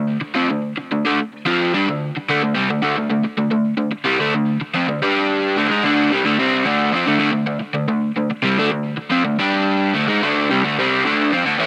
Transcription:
Already playing: D3 A3
0.21 muted overdriven electric guitar stroke
0.34 F3 C4
0.49 D3 A3
0.77 muted overdriven electric guitar stroke
0.91 D3 A3
1.05 D3 A3
1.45 F3 C4 F4
1.74 G3 D4
1.88 D3 A3
2.17 muted overdriven electric guitar stroke
2.29 D3 A3
2.43 D3 A3
2.55 C3 G3
2.70 D3 A3
2.82 D3 A3
2.97 D3 A3
3.10 D3 A3
3.25 muted overdriven electric guitar stroke
3.38 D3 A3
3.51 D3 A3
3.77 D3 A3
3.92 muted overdriven electric guitar stroke
4.04 C3 G3
4.19 D3 A3
4.35 D3 A3
4.61 muted overdriven electric guitar stroke
4.74 F3 C4
4.88 D3 A3
5.02 G3 D4 G4
5.57 D3 A3
5.69 G#3 D#4
5.84 D3 A3 D4
6.11 C3 G3
6.24 D3 A3
6.39 C3 G3 C4
6.65 D3 A3 D4
6.92 F3 C4
7.06 D3 A3
7.19 D3 A3
7.32 D3 A3
7.46 D3 A3
7.60 muted overdriven electric guitar stroke
7.74 D3 A3
7.88 D3 A3
8.17 D3 A3
8.31 muted overdriven electric guitar stroke
8.42 C3 G3
8.58 D3 A3
8.72 D3 A3
8.98 muted overdriven electric guitar stroke
9.10 F3 C4
9.25 D3 A3
9.39 G3 D4 G4
9.94 D3 A3
10.08 G#3 D#4
10.22 D3 A3 D4
10.50 C3 G3
10.64 D3 A3
10.79 C3 G3 C4
11.05 D3 A3 D4
11.32 F3 C4
11.45 D3 A3
11.57 A2 E3 A3 C#4 E4

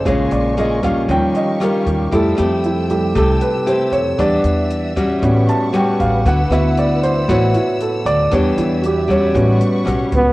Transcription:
0.04 A#1 A#2 C#3 G#3 C#4 F4 A#4 C#5 G#5 C#6, kick, cross-stick, closed hi-hat
0.31 A#1 D5, closed hi-hat
0.57 G#3 C#4 F4 D#5, closed hi-hat
0.83 G3 C#4 F4 F5, kick, cross-stick, closed hi-hat
1.06 D#2 D#3 F3 G3 C#4 G4 F5 C#6, kick, closed hi-hat
1.11 G5
1.35 D#5, closed hi-hat
1.60 G3 C#4 F4 A#4, cross-stick, closed hi-hat
1.86 D#2 G4, kick, closed hi-hat
2.11 F2 F3 G3 A3 E4 G4 A4 G5 E6, kick, closed hi-hat
2.37 F2 A3 C4 E4 G4, cross-stick, closed hi-hat
2.64 E4, closed hi-hat
2.90 G3 A3 E4 G4, closed hi-hat
3.15 C2 C3 A3 E4 G4 A4, kick, cross-stick, closed hi-hat
3.41 B4, closed hi-hat
3.66 A3 E4 G4 C5, closed hi-hat
3.92 F2 C#5, closed hi-hat
4.18 E2 E3 G3 B3 D4 G4 D5 E5, kick, cross-stick, closed hi-hat
4.44 E2, closed hi-hat
4.70 closed hi-hat
4.96 G3 C#4 F#4, kick, cross-stick, closed hi-hat
5.20 A1 A2 G3 B3 C#4 F#4 B4 F#5 C#6, kick, closed hi-hat
5.48 A5, closed hi-hat
5.73 G3 C#4 F#4 G5, cross-stick, closed hi-hat
6.00 A1 F5, kick, closed hi-hat
6.25 D2 D3 B3 E4 F#4 F#5 E6, kick, closed hi-hat
6.50 D2 B3 E4 F#4 E5, cross-stick, closed hi-hat
6.77 D5, closed hi-hat
7.03 C5, closed hi-hat
7.28 A1 A2 B3 E4 F#4 C#5, kick, cross-stick, closed hi-hat
7.54 E4, closed hi-hat
7.80 A4, closed hi-hat
8.05 D2 D5, closed hi-hat
8.30 E2 E3 G3 B3 D4 G4 C#5 D5 E5, kick, cross-stick, closed hi-hat
8.58 E2 E4, closed hi-hat
8.82 F#4, closed hi-hat
8.86 G4
9.08 G3 C#4 F#4 C#5, kick, cross-stick, closed hi-hat
9.34 A1 A2 G3 B3 C#4 F#4 B4 F#5 C#6, kick, closed hi-hat
9.61 closed hi-hat
9.85 B1 G3 C#4 F#4, cross-stick, closed hi-hat
10.12 C#2 B3, kick, closed hi-hat

